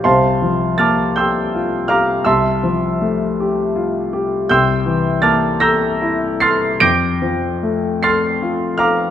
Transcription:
\new Staff \with { instrumentName = "Grand piano" } { \time 6/8 \key f \major \tempo 4. = 53 << { <c'' f'' a'' c'''>4 <a'' d''' f''' a'''>8 <g'' c''' e''' g'''>4 <f'' bes'' d''' f'''>8 | <e'' a'' c''' e'''>2~ <e'' a'' c''' e'''>8 r8 | <g'' c''' e''' g'''>4 <a'' d''' f''' a'''>8 <bes'' e''' g''' bes'''>4 <c''' f''' a''' c''''>8 | <d''' g''' bes''' d''''>4. <c''' f''' a''' c''''>4 <f'' bes'' d''' f'''>8 | } \\ { c,8 f8 bes8 g'8 f'8 g'8 | c,8 f8 a8 g'8 f'8 g'8 | c,8 e8 bes8 a'8 e'8 a'8 | f,8 f8 a8 a'8 f'8 a'8 | } >> }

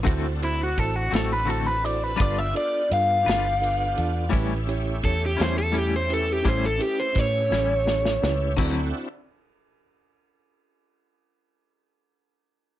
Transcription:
<<
  \new Staff \with { instrumentName = "Overdriven electric guitar" } { \time 12/8 \key a \dorian \tempo 4. = 56 r8 e'16 fis'16 a'16 fis'16 a'16 b'16 a'16 b'16 d''16 b'16 d''16 e''16 d''8 f''2 | r4 a'16 g'16 c''16 a'16 g'16 c''16 a'16 g'16 c''16 a'16 g'16 c''16 cis''2 | r1. | }
  \new Staff \with { instrumentName = "Tine electric piano" } { \time 12/8 \key a \dorian <e' fis' a' c''>8 <e' fis' a' c''>8 <e' fis' a' c''>8 <e' fis' a' c''>8 <e' fis' a' c''>8 <e' fis' a' c''>8 <d' f' a' b'>8 <d' f' a' d''>8 <d' f' a' b'>8 <d' f' a' b'>8 <d' f' a' b'>8 <d' f' a' d''>8 | <cis' e' g' b'>8 <cis' e' g' cis''>8 <cis' e' g' cis''>8 <cis' e' g' cis''>8 <cis' e' g' cis''>8 <cis' e' g' b'>8 <cis' e' g' a'>8 <cis' e' g' b'>8 <cis' e' g' b'>8 <cis' e' g' a'>8 <cis' e' g' a'>8 <cis' e' g' b'>8 | <c' e' fis' a'>8 r1 r4. | }
  \new Staff \with { instrumentName = "Tonewheel organ" } { \time 12/8 \key a \dorian <c' d' fis' a'>2. <b d' f' g'>2. | <a cis' e' g'>1. | <c' d' e' fis'>8 r1 r4. | }
  \new Staff \with { instrumentName = "Clean electric guitar" } { \time 12/8 \key a \dorian <d a c' fis'>8 r4 <a c' fis'>8 <d a c' fis'>8 r8 <g d' f' b'>8 r4 <d' f' b'>8 r4 | <a, g cis' e'>8 r4 <g cis' e'>8 <a, g cis' e'>8 r8 <a, g cis' e'>8 r4 <g cis' e'>8 r4 | <d fis c' e'>8 r1 r4. | }
  \new Staff \with { instrumentName = "Fingered electric bass" } { \clef bass \time 12/8 \key a \dorian d,4 a,,8 a,,4. g,,8 r8 g,8 g,,4 e,8 | a,,4 e,8 e,4. a,,8 r8 a,8 a,,4 cis,8 | d,8 r1 r4. | }
  \new DrumStaff \with { instrumentName = "Drums" } \drummode { \time 12/8 <bd cymr>8 cymr8 <bd cymr>8 <cymr sn>8 cymr8 cymr8 <bd cymr>8 cymr8 cymr8 <cymr sn>8 cymr8 cymr8 | <bd cymr>8 cymr8 <bd cymr>8 <cymr sn>8 cymr8 cymr8 <bd cymr>8 cymr8 <bd cymr sn>8 sn8 sn16 sn16 sn8 | <cymc bd>4. r4. r4. r4. | }
>>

